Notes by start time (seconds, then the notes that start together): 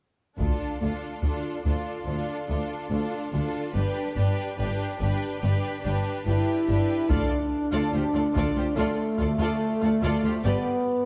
0.38 D2 D4 F4 A4, taiko
0.81 D2 D4 F4 A4
1.22 D2 D4 F4 A4
1.64 D2 D4 F4 A4
2.06 D2 D4 F4 A4
2.48 D2 D4 F4 A4
2.90 D2 D4 F4 A4
3.32 D2 D4 F4 A4
3.73 G1 G2 D4 G4 B4
4.15 G1 G2 D4 G4 B4
4.57 G1 G2 D4 G4 B4
4.99 G1 G2 D4 G4 B4
5.41 G1 G2 D4 G4 B4
5.83 G1 G2 D4 G4 B4
6.26 G1 G2 D4 E4 G4 B4
6.67 G1 G2 D4 G4 B4
7.08 D2 D4 F4 A4 D5, taiko
7.72 D2 F4 A4 D5
7.93 D2 F4 G4 C5
8.14 D2 F4 A4 D5
8.35 D2 F4 A4 D5, taiko
8.56 D2 F4 G4 C5
8.77 D2 A3 F4 A4 D5
9.18 D2 F4 A4 D5
9.39 D2 F4 A4 D5
9.81 D2 F4 A4 D5
10.02 D2 F4 A4 D5
10.23 D2 F4 G4 C5
10.44 G1 G2 B3 G4 B4 D5